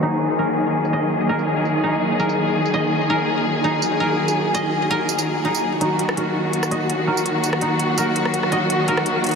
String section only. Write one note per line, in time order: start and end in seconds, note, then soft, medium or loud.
0.00 5.77 D#3 medium
0.00 5.77 F#3 medium
0.00 5.77 A#3 medium
0.00 5.77 G#4 medium
5.81 9.35 D#3 medium
5.81 9.35 F#3 medium
5.81 9.35 A#3 medium
5.81 9.35 F#4 medium